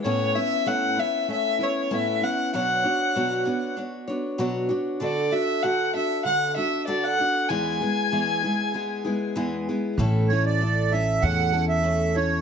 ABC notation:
X:1
M:4/4
L:1/16
Q:1/4=96
K:A
V:1 name="Fiddle"
c2 e2 f2 e2 e2 c2 e2 f2 | f8 z8 | d2 e2 f2 e2 f2 e2 d f3 | g12 z4 |
z16 |]
V:2 name="Accordion"
z16 | z16 | z16 | z16 |
z2 c d3 e2 f3 e3 c2 |]
V:3 name="Steel-string acoustic guitar"
[A,,A,B,CE]2 [B,CE]2 [A,,A,B,CE]2 [B,CE]2 [A,B,CE]2 [B,CE]2 [A,,A,B,CE]2 [B,CE]2 | [B,,F,B,DFc]2 [B,DFc]2 [B,,F,B,DFc]2 [B,DFc]2 [B,DFc]2 [B,DFc]2 [B,,F,B,DFc]2 [B,DFc]2 | [D,DFA]2 [DFA]2 [D,DFA]2 [DFA]2 [D,DFA]2 [DFA]2 [D,DFA]2 [DFA]2 | [E,,E,G,B,EG]2 [G,B,EG]2 [E,,E,G,B,EG]2 [G,B,EG]2 [G,B,EG]2 [G,B,EG]2 [E,,E,G,B,EG]2 [G,B,EG]2 |
[A,,A,CEA]2 [CEA]2 [A,EA]2 [CEA]2 [A,,A,CEA]2 [CEA]2 [A,CEA]2 [CEA]2 |]
V:4 name="Upright bass" clef=bass
z16 | z16 | z16 | z16 |
A,,,8 E,,8 |]